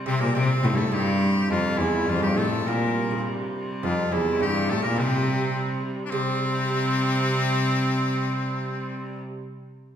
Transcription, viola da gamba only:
0.08 0.21 C3 loud
0.22 0.34 A#2 loud
0.35 0.48 C3 loud
0.64 0.73 A2 loud
0.72 0.79 G2 medium
0.77 0.91 A2 loud
0.91 1.47 G2 loud
1.49 1.79 F2 loud
1.77 2.05 E2 medium
2.06 2.22 F2 loud
2.06 2.08 G2 medium
2.21 2.38 G2 medium
2.36 2.65 A2 medium
2.65 3.20 A#2 loud
3.84 4.10 F2 loud
4.14 4.44 E2 medium
4.42 4.73 G2 loud
4.72 4.85 A2 medium
4.86 5.02 A#2 loud
5.00 5.85 C3 loud
6.13 9.17 C3 loud

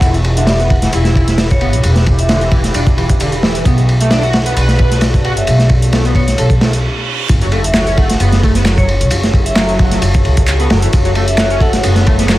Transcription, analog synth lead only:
0.02 0.14 E3 medium
0.37 0.46 D3 medium
0.47 0.59 G3 medium
0.60 0.70 B3 medium
0.83 0.89 E3 loud
0.93 1.37 E4 medium
1.61 1.69 B3 medium
2.29 2.37 D3 loud
2.41 2.48 E3 medium
2.52 2.60 E3 medium
2.75 2.82 D4 medium
2.98 3.05 E3 medium
3.20 3.28 D3 loud
3.43 3.65 E3 medium
3.66 3.77 B3 medium
4.01 4.10 A3 medium
4.11 4.22 D4 medium
4.23 4.33 F#4 medium
4.46 4.52 B3 loud
4.57 5.01 B4 medium
5.25 5.32 F#4 medium
5.93 6.01 A3 loud
6.05 6.12 B3 medium
6.16 6.23 B3 medium
6.38 6.46 A4 medium
6.61 6.66 A3 medium
7.42 7.46 F#3 medium
7.52 7.60 A3 medium
7.75 7.86 F#3 medium
7.87 7.96 C#4 medium
7.98 8.09 A3 medium
8.20 8.42 B3 medium
8.43 8.51 A3 medium
8.55 8.62 B3 loud
8.66 8.77 F#3 medium
8.78 8.84 F#3 medium
9.57 10.01 F#3 medium
10.60 10.66 B3 medium
10.70 10.75 F#3 medium
10.83 10.86 E3 medium
11.05 11.09 F#3 medium
11.16 11.23 A3 medium
11.39 11.50 F#3 medium
11.51 11.60 C#4 medium
11.61 11.73 A3 medium
11.84 12.06 B3 medium
12.07 12.14 A3 medium
12.19 12.25 B3 loud
12.29 12.38 F#3 medium

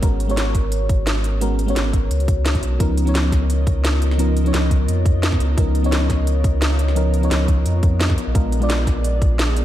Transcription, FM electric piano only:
0.00 0.02 G#3 loud
0.00 0.26 G#3 medium
0.00 0.02 B3 medium
0.00 0.27 B3 medium
0.00 0.03 C#4 medium
0.00 0.27 C#4 medium
0.00 0.03 F#4 medium
0.00 0.27 F#4 medium
0.00 0.03 A#4 loud
0.00 0.28 A#4 loud
0.00 0.31 C#5 loud
0.28 1.39 G#3 loud
0.28 1.39 B3 medium
0.28 1.40 C#4 medium
0.28 1.40 F#4 medium
0.28 1.40 C#5 loud
1.41 1.65 G#3 loud
1.41 1.66 B3 medium
1.41 1.66 C#4 medium
1.41 1.66 F#4 medium
1.41 1.66 A#4 loud
1.66 2.77 G#3 medium
1.66 2.78 B3 medium
1.66 2.78 C#4 medium
1.66 2.79 F#4 medium
1.66 2.79 C#5 loud
2.79 3.04 F3 loud
2.79 3.04 B3 medium
2.79 3.05 C#4 medium
2.79 3.05 D#4 medium
2.79 3.05 A#4 loud
3.05 4.16 F3 medium
3.05 4.17 B3 medium
3.05 4.17 C#4 medium
3.05 4.17 D#4 medium
3.05 4.18 C#5 loud
4.18 4.43 F3 medium
4.18 4.43 B3 medium
4.18 4.43 C#4 medium
4.18 4.44 D#4 medium
4.18 4.44 A#4 loud
4.44 5.55 F3 medium
4.44 5.55 B3 medium
4.44 5.56 C#4 medium
4.44 5.56 D#4 medium
4.44 5.57 C#5 loud
5.57 5.81 F3 medium
5.57 5.82 B3 medium
5.57 5.82 C#4 medium
5.57 5.82 D#4 medium
5.57 5.83 A#4 loud
5.83 6.94 F3 medium
5.83 6.94 B3 medium
5.83 6.94 C#4 medium
5.83 6.95 D#4 medium
5.83 6.95 C#5 loud
6.95 7.20 F3 loud
6.95 7.21 B3 medium
6.95 7.21 C#4 medium
6.95 7.21 D#4 medium
6.95 7.21 A#4 loud
7.21 7.80 F3 loud
7.21 7.81 B3 medium
7.21 7.81 C#4 medium
7.21 7.82 D#4 medium
7.21 7.82 C#5 loud
7.82 8.16 F3 medium
7.82 8.17 B3 medium
7.82 8.17 C#4 medium
7.82 8.17 D#4 medium
7.82 8.17 A#4 medium
8.34 8.59 G#3 medium
8.34 8.59 B3 medium
8.34 8.59 D4 medium
8.34 8.60 F4 medium
8.34 8.60 A#4 loud
8.60 9.65 G#3 loud
8.60 9.65 B3 medium
8.60 9.65 D4 medium
8.60 9.65 F4 medium
8.60 9.65 D5 loud

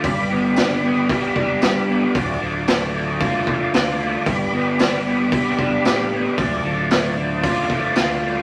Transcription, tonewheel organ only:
0.00 8.42 D5 medium
0.00 2.13 B5 medium
0.00 4.23 D6 medium
0.04 2.14 G4 medium
2.15 4.25 F4 medium
2.15 4.24 A5 medium
4.27 6.36 G4 medium
4.27 6.36 B5 medium
4.27 6.36 D6 medium
6.37 8.42 F4 medium
6.37 8.42 A5 medium
6.37 8.42 D6 medium

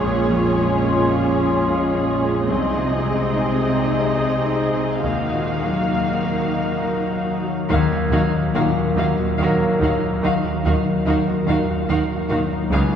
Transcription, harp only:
0.00 0.29 F3 soft
0.00 0.57 G#3 soft
0.00 0.95 C#4 soft
0.00 0.84 F4 soft
0.00 1.10 C#5 soft
0.04 2.53 A#2 soft
0.30 1.93 F3 soft
0.58 1.66 G#3 soft
0.85 1.39 F4 soft
1.11 2.52 C#5 soft
1.40 2.53 F4 soft
1.67 2.20 G#3 soft
1.94 2.52 F3 soft
2.21 3.03 G#3 soft
2.48 5.08 C3 soft
2.77 4.45 C4 soft
3.05 4.16 G#3 soft
3.33 3.87 D#4 soft
3.61 5.08 C5 soft
3.89 5.35 D#4 soft
4.17 4.73 G#3 soft
4.46 5.09 C4 soft
4.75 5.08 G#3 soft
5.05 7.70 D#3 soft
5.36 7.11 D#4 soft
5.66 6.82 F#3 soft
5.95 9.85 F5 soft
6.25 8.54 A#4 soft
6.83 7.42 F#3 soft
7.13 7.91 D#4 soft
7.43 8.12 F#3 soft
7.71 10.23 D#3 medium
7.92 10.02 D#4 soft
8.13 9.83 F#3 soft
8.55 8.96 A#4 medium
8.77 9.18 F#4 soft
8.98 9.40 A#4 soft
9.20 11.28 F#4 soft
9.41 11.07 A#4 soft
9.84 10.44 F#3 soft
10.03 10.65 D#4 soft
10.24 12.75 D#3 medium
10.45 12.31 F#3 soft
10.66 12.51 D#4 soft
11.08 11.49 A#4 soft
11.29 11.69 F#4 soft
11.50 11.89 A#4 soft
11.70 12.75 F#4 soft
11.90 12.75 A#4 soft
12.32 12.76 F#3 soft
12.53 12.96 D#4 soft
12.72 12.96 C#3 medium

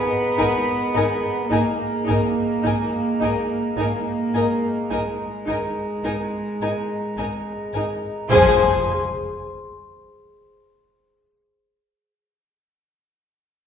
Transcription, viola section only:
0.37 0.45 D#4 soft
0.94 1.02 D#4 soft
1.50 1.58 D#4 soft
2.06 2.14 D#4 soft
2.63 2.71 D#4 soft
3.20 3.28 D#4 soft
3.77 3.85 D#4 soft
4.35 4.43 D#4 soft
4.90 4.98 D#4 soft
5.47 5.55 D#4 soft
6.04 6.12 D#4 soft
6.62 6.70 D#4 soft
7.18 7.26 D#4 soft
7.77 7.85 D#4 soft
8.33 8.96 G#4 medium

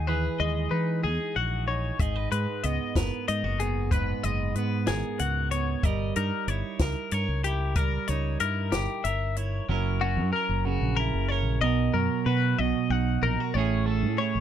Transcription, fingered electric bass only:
0.00 0.27 D#2 medium
0.40 0.67 D#2 medium
0.71 1.06 E3 medium
1.04 1.17 E2 medium
1.36 1.90 A#1 medium
1.99 2.27 G#1 medium
2.32 2.45 G#2 medium
2.64 2.78 C#2 medium
2.96 3.09 F#1 medium
3.29 3.42 G#2 medium
3.44 4.12 F#1 medium
4.24 4.51 F#1 medium
4.55 4.89 G#2 medium
4.88 5.02 G#1 medium
5.20 5.75 C#2 medium
5.83 6.11 G1 medium
6.17 6.30 G2 medium
6.48 6.62 G1 medium
6.79 6.94 C#2 medium
7.12 7.26 G2 medium
7.28 7.97 C#2 medium
8.09 8.36 C#2 medium
8.41 8.74 G2 medium
8.73 8.87 G1 medium
9.05 9.60 G1 medium
9.69 10.18 F#1 medium
10.17 10.31 F#2 medium
10.49 10.77 F#1 medium
10.82 11.09 A#1 medium
11.13 11.45 F#1 medium
11.45 11.59 A#1 medium
11.62 11.89 B1 loud
11.94 12.08 F#2 medium
12.26 12.54 B2 medium
12.59 12.72 B1 medium
12.90 13.18 B1 medium
13.22 13.36 A#1 medium
13.55 14.04 A1 medium
14.03 14.16 A2 medium
14.35 14.40 A1 medium

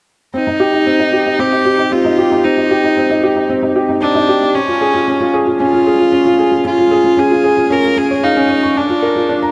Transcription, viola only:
0.35 1.41 D#4 medium
1.40 1.94 G4 medium
1.92 2.46 F4 medium
2.44 3.50 D#4 medium
4.01 4.56 D4 medium
4.54 5.34 C#4 medium
5.60 6.62 F4 medium
6.66 7.20 F4 medium
7.19 7.74 G#4 medium
7.72 7.99 A#4 medium
7.98 8.25 G#4 medium
8.23 8.78 D#4 medium
8.76 9.52 D4 medium

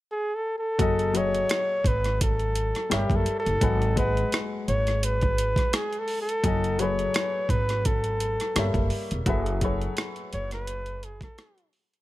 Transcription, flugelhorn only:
0.11 0.36 G#4 medium
0.35 0.57 A4 medium
0.59 1.18 A4 medium
1.17 1.89 C#5 loud
1.87 2.21 B4 medium
2.23 2.88 A4 medium
2.93 3.17 G4 medium
3.16 3.39 A4 medium
3.39 3.94 A4 medium
3.99 4.39 B4 medium
4.69 5.06 C#5 medium
5.04 5.77 B4 medium
5.75 6.00 G#4 medium
5.99 6.21 A4 medium
6.22 6.81 A4 medium
6.80 7.52 C#5 loud
7.50 7.88 B4 medium
7.86 8.91 A4 medium
10.33 10.51 C#5 medium
10.53 11.06 B4 medium
11.04 11.23 G#4 medium
11.24 11.71 A4 medium

